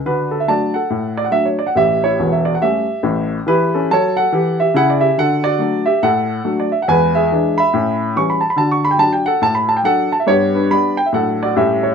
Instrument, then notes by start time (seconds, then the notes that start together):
upright piano
0.06 D3 D4 F#4 B4
0.31 A4
0.40 E5
0.48 F#3 A3 D4 D5 A5
0.74 A4 F#5
0.90 A2
1.17 D5
1.24 F#5
1.31 F#3 A3 D4 E5
1.45 C#5
1.59 D5
1.67 F#5
1.75 A1 A2 G4 E5
2.04 E4 C#5
2.19 E1 E2
2.32 E5
2.45 D5
2.55 F#5
2.61 G3 A3 C#4 G4 E5
3.03 A1 A2
3.46 E3 E4 G4 B4
3.74 C#4 A4
3.91 F#3 A4 C#5 A5
4.17 A4 F#5
4.32 E3 G4
4.60 G4 E5
4.74 C#3 E4 F#5
4.90 D5
5.01 G4 E5
5.18 D3 F#4 A4 F#5
5.44 F#4 D5
5.59 F#3 A3 D4
5.86 G4 E5
6.03 A2 A4 F#5
6.44 F#3 A3 D4
6.60 D5
6.72 E5
6.82 F#5
6.88 E2 G#3 B4 G#5
7.15 G#4 E5
7.32 E3 G#3 D4
7.58 E5 B5
7.74 A2 C#4
8.16 E3 G3 C#4 C#6
8.30 B5
8.41 A5
8.50 B5
8.56 D3 F#4 A5
8.71 C#6
8.85 B5
8.91 G5
8.99 F#3 D4 A5
9.13 G5
9.26 A4 F#5
9.42 A2 A5
9.55 B5
9.69 A5
9.77 G5
9.83 F#3 D4 A4 F#5
10.12 A5
10.20 E5
10.27 G2 B3 G4 C#5
10.55 D4 B4
10.70 G3 B3 D4 D5 B5
10.97 G5
11.06 E5
11.13 A2 F#3 A3 D4 A4 F#5
11.43 F#4 D5
11.56 A2 G3 A3 C#4 G4 E5
11.83 C#5